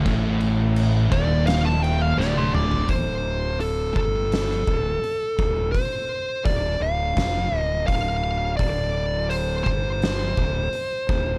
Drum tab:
CC |x-x-x-x-x-x-----|----------------|----------------|----------------|
HH |----------------|o---o---o---o---|o---o---o---o---|o---o---o---o---|
SD |--------o---o---|--------oo------|--------o-------|--------o-------|
T1 |-------------o--|----------------|----------------|----------------|
T2 |--------------o-|----------------|----------------|----------------|
FT |---------------o|----------------|----------------|----------------|
BD |o-----o---------|o-----o---o---o-|o---o---o---o---|o-----o---o---o-|